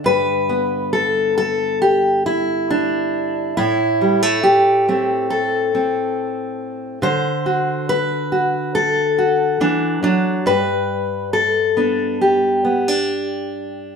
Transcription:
0.00 3.57 D3 medium
0.04 3.52 G2 medium
0.04 0.92 B4 loud
0.49 3.52 B3 soft
0.93 1.36 A4 medium
1.38 1.81 A4 loud
1.82 2.26 G4 medium
2.26 3.56 E4 medium
2.70 3.58 D4 medium
3.57 7.03 A2 medium
3.57 4.43 E4 loud
4.01 4.22 G3 soft
4.22 4.87 A3 soft
4.43 5.30 G4 medium
4.88 6.98 A3 medium
4.88 5.73 C4 soft
5.30 7.03 A4 medium
5.75 6.98 C4 medium
7.02 9.60 D3 medium
7.02 7.89 C5 loud
7.46 8.31 F#4 soft
7.89 8.74 B4 loud
8.32 9.17 F#4 medium
8.75 10.46 A4 loud
9.18 10.41 F#4 medium
9.61 10.02 E3 medium
9.61 10.02 D4 medium
10.03 10.45 F#3 medium
10.03 10.46 D4 medium
10.46 13.96 G2 medium
10.46 11.33 B4 loud
11.33 12.21 A4 medium
11.77 12.63 B3 soft
11.77 12.64 D4 soft
12.21 13.96 G4 medium
12.65 12.88 B3 soft
12.88 13.96 D4 soft

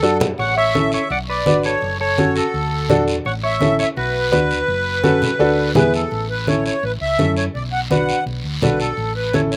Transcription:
0.00 0.32 F#2 medium
0.00 0.28 D4 medium
0.00 0.28 F#4 medium
0.00 0.18 A4 loud
0.00 0.28 A4 medium
0.00 short guiro medium
0.20 low conga medium
0.20 short guiro medium
0.38 0.96 A1 loud
0.38 0.56 C#5 medium
0.38 0.56 F#5 medium
0.38 high conga soft
0.38 long guiro medium
0.57 0.91 C#5 medium
0.57 0.92 E5 loud
0.74 1.00 C#4 medium
0.74 1.00 E4 medium
0.74 1.00 A4 medium
0.74 high conga medium
0.74 short guiro medium
0.92 1.10 C#5 medium
0.92 1.11 E5 medium
0.92 short guiro medium
1.10 1.46 B1 medium
1.10 1.17 D5 medium
1.10 1.19 F#5 medium
1.10 high conga soft
1.10 long guiro medium
1.30 1.62 B4 medium
1.30 1.62 D5 medium
1.46 1.75 G#1 medium
1.46 1.71 D4 medium
1.46 1.72 F#4 medium
1.46 1.72 B4 medium
1.46 high conga medium
1.46 short guiro medium
1.63 1.98 A4 medium
1.63 1.98 C#5 medium
1.63 short guiro medium
1.82 2.39 F#1 medium
1.82 high conga soft
1.82 long guiro medium
2.00 2.34 A4 medium
2.00 2.37 C#5 medium
2.18 2.43 C#4 medium
2.18 2.43 F#4 medium
2.18 2.43 A4 medium
2.18 high conga medium
2.18 short guiro medium
2.36 3.04 F#4 medium
2.36 3.04 A4 medium
2.36 short guiro medium
2.54 2.90 D2 medium
2.54 high conga soft
2.54 long guiro medium
2.89 3.18 E2 medium
2.89 3.15 D4 medium
2.89 3.15 F#4 medium
2.89 3.15 A4 loud
2.89 high conga medium
2.89 low conga medium
2.89 short guiro medium
3.08 short guiro medium
3.25 3.83 A1 medium
3.25 3.31 C#5 medium
3.25 3.34 F#5 medium
3.25 high conga soft
3.25 long guiro medium
3.44 3.77 C#5 medium
3.44 3.77 E5 loud
3.61 3.86 C#4 medium
3.61 3.86 E4 medium
3.61 3.86 A4 medium
3.61 high conga medium
3.61 short guiro medium
3.79 3.85 C#5 medium
3.79 3.89 E5 medium
3.79 short guiro medium
3.97 4.32 B1 medium
3.97 5.72 F#4 medium
3.97 5.72 B4 medium
3.97 high conga soft
3.97 long guiro medium
4.32 4.61 D2 loud
4.32 4.57 D4 medium
4.32 4.57 F#4 medium
4.32 4.57 B4 medium
4.32 high conga medium
4.32 short guiro medium
4.51 short guiro medium
4.68 5.25 F#1 medium
4.68 high conga soft
4.68 long guiro medium
5.03 5.29 C#4 medium
5.03 5.29 F#4 medium
5.03 5.29 A4 medium
5.03 high conga medium
5.03 short guiro medium
5.22 low conga medium
5.22 short guiro medium
5.39 5.75 D2 medium
5.39 5.68 D4 medium
5.39 5.68 F#4 medium
5.39 5.69 A4 loud
5.39 high conga soft
5.39 long guiro medium
5.75 6.04 E2 medium
5.75 6.01 B3 medium
5.75 6.01 E4 medium
5.75 6.01 G#4 loud
5.75 5.93 B4 medium
5.75 high conga medium
5.75 low conga medium
5.75 short guiro medium
5.94 6.27 A4 medium
5.94 short guiro medium
6.11 6.69 A1 medium
6.11 high conga soft
6.11 long guiro medium
6.30 6.48 B4 medium
6.47 6.72 C#4 medium
6.47 6.73 E4 medium
6.47 6.73 A4 medium
6.47 6.64 C#5 medium
6.47 high conga medium
6.47 short guiro medium
6.66 6.84 C#5 medium
6.66 short guiro medium
6.83 6.97 A1 medium
6.83 6.92 B4 medium
6.83 high conga soft
6.83 long guiro medium
7.01 7.15 C#2 medium
7.01 7.34 E5 loud
7.18 7.47 F#2 medium
7.18 7.44 C#4 medium
7.18 7.44 E4 medium
7.18 7.44 A4 medium
7.18 high conga medium
7.18 short guiro medium
7.37 7.45 C#5 medium
7.37 short guiro medium
7.55 8.12 B1 medium
7.55 7.63 D5 medium
7.55 high conga soft
7.55 long guiro medium
7.72 7.80 F#5 medium
7.91 8.16 D4 medium
7.91 8.16 F#4 medium
7.91 8.16 B4 medium
7.91 8.24 F#5 medium
7.91 high conga medium
7.91 short guiro medium
8.09 short guiro medium
8.26 8.40 B1 medium
8.26 high conga soft
8.26 long guiro medium
8.44 8.58 D2 medium
8.62 8.90 B1 medium
8.62 8.87 D4 medium
8.62 8.87 F#4 medium
8.62 8.88 A4 medium
8.62 8.79 B4 medium
8.62 high conga medium
8.62 low conga medium
8.62 short guiro medium
8.79 9.13 A4 medium
8.79 short guiro medium
8.97 9.55 A1 medium
8.97 high conga soft
8.97 long guiro medium
9.16 9.34 B4 medium
9.33 9.56 C#4 medium
9.33 9.56 E4 medium
9.33 9.56 A4 medium
9.33 9.41 C#5 medium
9.33 high conga medium
9.33 short guiro medium
9.52 9.56 C#5 medium
9.52 short guiro medium

